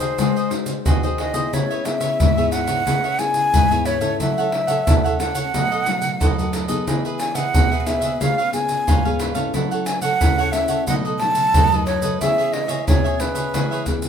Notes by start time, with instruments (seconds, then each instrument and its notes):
Already playing: nylon-string guitar D#3 D#4 F#4 C5, flute C5
0.00 cavaquinho G#4 C5 D#5, pandeiro, maracas
0.18 nylon-string guitar G#3, cavaquinho F#4 G#4 C5 D#5, pandeiro, maracas, surdo
0.36 cavaquinho G#4 C5 D#5, pandeiro, maracas
0.51 nylon-string guitar D#4 F#4 C5, muted cavaquinho stroke, pandeiro, maracas
0.66 pandeiro, maracas
0.86 nylon-string guitar D#3, cavaquinho F#4 G#4 C5 D#5, pandeiro, maracas, surdo
1.03 nylon-string guitar D#4 F#4 C5, cavaquinho G#4 C5 D#5, pandeiro, maracas
1.18 cavaquinho F#4 G#4 C5 D#5, flute D#5, pandeiro
1.34 nylon-string guitar B3 E4 G#4, cavaquinho G#4 C5 D#5, pandeiro, maracas
1.53 nylon-string guitar C#3, cavaquinho E4 B4 C#5 E5, flute C#5, pandeiro, maracas, surdo
1.70 cavaquinho B4 C#5 E5, pandeiro, maracas
1.85 nylon-string guitar B3 E4 G#4, flute E5, muted cavaquinho stroke, pandeiro, maracas
2.00 cavaquinho B4 C#5 E5, pandeiro, maracas
2.20 nylon-string guitar G#2, cavaquinho E4 B4 C#5 E5, pandeiro, maracas, surdo
2.37 nylon-string guitar B3 E4 G#4, cavaquinho B4 C#5 E5, pandeiro, maracas
2.52 flute F#5, pandeiro, maracas
2.67 cavaquinho B4 C#5 E5, pandeiro, maracas
2.87 nylon-string guitar C#3 B3 E4 G#4, cavaquinho E4 B4 C#5 E5, pandeiro, maracas, surdo
3.04 cavaquinho B4 C#5 E5, pandeiro, maracas
3.18 nylon-string guitar B3 E4 G#4, flute G#5, muted cavaquinho stroke, pandeiro, maracas
3.34 pandeiro, maracas
3.53 nylon-string guitar G#2, cavaquinho E4 B4 C#5 E5, pandeiro, maracas, surdo
3.71 nylon-string guitar B3 E4 G#4, cavaquinho B4 C#5 E5, pandeiro, maracas
3.85 cavaquinho E4 B4 C#5 E5, flute C#5, pandeiro, maracas
4.01 nylon-string guitar C#4 E4 A4, cavaquinho B4 C#5 E5, pandeiro, maracas
4.20 nylon-string guitar F#3, cavaquinho E4 A4 C#5 F#5, flute E5, pandeiro, maracas, surdo
4.38 cavaquinho A4 C#5 F#5, pandeiro, maracas
4.52 muted cavaquinho stroke, pandeiro
4.67 cavaquinho A4 C#5 F#5, pandeiro, maracas
4.87 nylon-string guitar C#3 C#4 E4 A4, cavaquinho E4 A4 C#5 F#5, pandeiro, maracas, surdo
5.04 cavaquinho A4 C#5 F#5, pandeiro, maracas
5.19 nylon-string guitar C#4 E4 A4, flute F#5, pandeiro, maracas
5.34 cavaquinho A4 C#5 F#5, pandeiro, maracas
5.54 nylon-string guitar B2 F#3 A3 D#4, cavaquinho D#4 A4 B4 D#5, pandeiro, maracas, surdo
5.71 cavaquinho A4 B4 D#5, pandeiro, maracas
5.86 nylon-string guitar F#3 A3 D#4, muted cavaquinho stroke, pandeiro, maracas
6.02 pandeiro, maracas
6.20 nylon-string guitar F#2, cavaquinho D#4 A4 B4 D#5, pandeiro, maracas, surdo
6.38 nylon-string guitar F#3 A3 D#4, cavaquinho A4 B4 D#5, pandeiro, maracas
6.53 cavaquinho D#4 A4 B4 D#5, pandeiro, maracas
6.68 nylon-string guitar B3 D#4 G#4, cavaquinho A4 B4 D#5, pandeiro, maracas
6.87 nylon-string guitar E3, cavaquinho D#4 G#4 B4 E5, pandeiro, maracas, surdo
7.05 cavaquinho G#4 B4 E5, pandeiro, maracas
7.19 flute G#5, muted cavaquinho stroke, pandeiro, maracas
7.35 cavaquinho G#4 B4 E5, flute F#5, pandeiro, maracas
7.54 nylon-string guitar B2 B3 D#4 G#4, cavaquinho D#4 G#4 B4 E5, pandeiro, maracas, surdo
7.71 cavaquinho G#4 B4 E5, pandeiro, maracas
7.80 flute F#5
7.86 nylon-string guitar B3 D#4 G#4, flute E5, pandeiro, maracas
8.01 cavaquinho G#4 B4 E5, pandeiro, maracas
8.20 nylon-string guitar C#3 B3 F4 G#4, cavaquinho F4 B4 C#5 F5, flute F5, pandeiro, maracas, surdo
8.38 cavaquinho B4 C#5 F5, pandeiro, maracas
8.53 nylon-string guitar B3 F4 G#4, flute G#5, muted cavaquinho stroke, pandeiro, maracas
8.69 pandeiro, maracas
8.87 nylon-string guitar G#2, cavaquinho F4 B4 C#5 F5, pandeiro, maracas, surdo
9.05 nylon-string guitar B3 F4 G#4, cavaquinho B4 C#5 F5, pandeiro, maracas
9.20 cavaquinho F4 B4 C#5 F5, pandeiro, maracas
9.34 nylon-string guitar C#4 E4 A4, cavaquinho B4 C#5 F5, pandeiro, maracas
9.54 nylon-string guitar F#3, cavaquinho E4 A4 C#5 F#5, pandeiro, maracas, surdo
9.71 cavaquinho A4 C#5 F#5, pandeiro, maracas
9.86 flute G#5, muted cavaquinho stroke, pandeiro, maracas
10.02 cavaquinho A4 C#5 F#5, flute F#5, pandeiro, maracas
10.21 nylon-string guitar C#3 C#4 E4 A4, cavaquinho E4 A4 C#5 F#5, pandeiro, maracas, surdo
10.38 cavaquinho A4 C#5 F#5, pandeiro, maracas
10.52 nylon-string guitar C#4 E4 A4, flute E5, pandeiro, maracas
10.68 cavaquinho A4 C#5 F#5, pandeiro, maracas
10.87 nylon-string guitar B2 F#3 A3 D#4, cavaquinho D#4 A4 B4 D#5, flute F#5, pandeiro, maracas, surdo
11.05 cavaquinho A4 B4 D#5, pandeiro, maracas
11.19 nylon-string guitar F#3 A3 D#4, flute A5, muted cavaquinho stroke, pandeiro
11.35 pandeiro, maracas
11.54 nylon-string guitar F#2, cavaquinho D#4 A4 B4 D#5, pandeiro, maracas, surdo
11.72 nylon-string guitar F#3 A3 D#4, cavaquinho A4 B4 D#5, pandeiro, maracas
11.86 cavaquinho D#4 A4 B4 D#5, flute C#5, pandeiro
12.02 cavaquinho A4 B4 D#5, pandeiro, maracas
12.20 nylon-string guitar E3 B3 C#4 G#4, cavaquinho E4 G#4 C#5 E5, flute E5, pandeiro, maracas, surdo
12.38 cavaquinho G#4 C#5 E5, pandeiro, maracas
12.53 flute D#5, muted cavaquinho stroke, pandeiro
12.68 cavaquinho G#4 C#5 E5, pandeiro, maracas
12.87 nylon-string guitar B2 B3 C#4 G#4, cavaquinho E4 G#4 C#5 E5, flute C#5, pandeiro, maracas, surdo
13.04 cavaquinho G#4 C#5 E5, pandeiro, maracas
13.20 nylon-string guitar B3 C#4 G#4, flute B4, pandeiro, maracas
13.35 cavaquinho G#4 C#5 E5, pandeiro, maracas
13.54 nylon-string guitar E3, cavaquinho E4 G#4 C#5 E5, pandeiro, maracas, surdo
13.71 cavaquinho G#4 C#5 E5, pandeiro, maracas
13.86 nylon-string guitar B3 C#4 G#4, muted cavaquinho stroke, pandeiro, maracas, surdo
14.02 pandeiro, maracas